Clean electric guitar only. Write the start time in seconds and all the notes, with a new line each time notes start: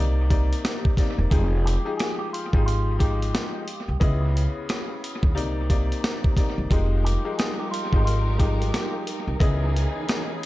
1.65 G4
1.97 G#4
2.19 G4
2.33 F4
2.66 F4
3.00 G4
7.04 G4
7.38 G#4
7.59 G4
7.71 F4
8.05 F4
8.39 G4